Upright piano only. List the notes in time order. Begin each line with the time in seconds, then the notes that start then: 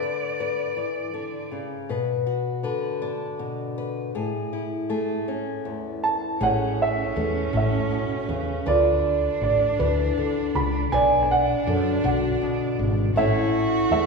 6.04 A5
6.43 C#5 F#5
6.82 E5
7.57 E5
8.68 F4 D5
9.43 D5
9.79 B4
10.55 B5
10.92 D5 G#5
11.23 G#5
11.31 F#5
12.05 F#5
13.17 C#5 E5
13.92 E5